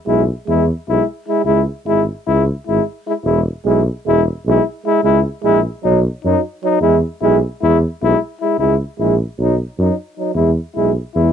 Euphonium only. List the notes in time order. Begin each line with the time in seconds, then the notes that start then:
0.08 G#3
0.48 G#3
0.90 G#3
1.29 G#3
1.46 G#3
1.87 G#3
2.27 G#3
2.68 G#3
3.07 G#3
3.24 G#3
3.65 G#3
4.06 G#3
4.47 G#3
4.86 G#3
5.03 G#3
5.44 G#3
5.84 F#3
6.25 F#3
6.63 F#3
6.81 G#3
7.22 G#3
7.62 G#3
8.04 G#3
8.42 G#3
8.59 G#3
8.99 G#3
9.40 F#3
9.79 F#3
10.18 F#3
10.35 G#3
10.76 G#3
11.16 G#3